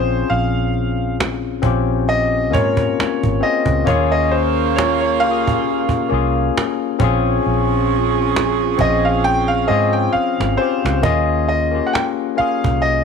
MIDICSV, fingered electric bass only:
0, 0, Header, 1, 3, 480
1, 0, Start_track
1, 0, Tempo, 895522
1, 153, Time_signature, 4, 2, 24, 8
1, 6989, End_track
2, 0, Start_track
2, 0, Title_t, "Fingered electric bass"
2, 0, Program_c, 0, 33
2, 0, Note_on_c, 0, 34, 82
2, 119, Note_off_c, 0, 34, 0
2, 163, Note_on_c, 0, 34, 86
2, 857, Note_off_c, 0, 34, 0
2, 877, Note_on_c, 0, 34, 87
2, 1369, Note_off_c, 0, 34, 0
2, 1369, Note_on_c, 0, 44, 81
2, 1565, Note_off_c, 0, 44, 0
2, 1738, Note_on_c, 0, 32, 84
2, 1823, Note_off_c, 0, 32, 0
2, 1964, Note_on_c, 0, 37, 74
2, 2056, Note_off_c, 0, 37, 0
2, 2079, Note_on_c, 0, 39, 102
2, 2800, Note_off_c, 0, 39, 0
2, 2800, Note_on_c, 0, 37, 99
2, 3203, Note_off_c, 0, 37, 0
2, 3280, Note_on_c, 0, 36, 97
2, 3480, Note_off_c, 0, 36, 0
2, 3757, Note_on_c, 0, 34, 97
2, 3958, Note_off_c, 0, 34, 0
2, 4000, Note_on_c, 0, 34, 96
2, 4695, Note_off_c, 0, 34, 0
2, 4715, Note_on_c, 0, 34, 87
2, 5200, Note_on_c, 0, 44, 88
2, 5208, Note_off_c, 0, 34, 0
2, 5400, Note_off_c, 0, 44, 0
2, 5573, Note_on_c, 0, 32, 90
2, 5661, Note_off_c, 0, 32, 0
2, 5813, Note_on_c, 0, 37, 89
2, 5901, Note_off_c, 0, 37, 0
2, 5919, Note_on_c, 0, 39, 95
2, 6322, Note_off_c, 0, 39, 0
2, 6782, Note_on_c, 0, 36, 76
2, 6989, Note_off_c, 0, 36, 0
2, 6989, End_track
3, 0, Start_track
3, 0, Title_t, "Muted fingered electric bass strokes"
3, 1604, Note_on_c, 9, 29, 43
3, 1658, Note_off_c, 9, 29, 0
3, 5440, Note_on_c, 9, 29, 45
3, 5493, Note_off_c, 9, 29, 0
3, 6643, Note_on_c, 9, 29, 41
3, 6696, Note_off_c, 9, 29, 0
3, 6989, End_track
0, 0, End_of_file